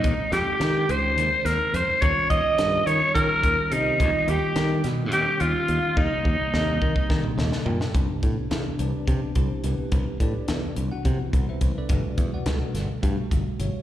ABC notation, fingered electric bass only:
X:1
M:7/8
L:1/16
Q:1/4=106
K:Cphr
V:1 name="Fingered electric bass" clef=bass
E,, z F,, z E,2 D,,2 E,, z E,, z F,, z | E,, z E,, z G,,2 E, z E, z E,, z C,2 | ^D,, z D,, z ^D,2 =B,,2 D,, z D,, z D,, z | E,, z E,, z E,,2 E, z E, z E,, z B,, z |
[K:Clyd] C,, z A,, z E,, z C,, z C, z C,, z C,, z | C,, z A,, z E,, z C,, z C, z C,, z C,, z | G,,, z E,, z _D,, z G,,, z G,, z G,,, z G,,, z |]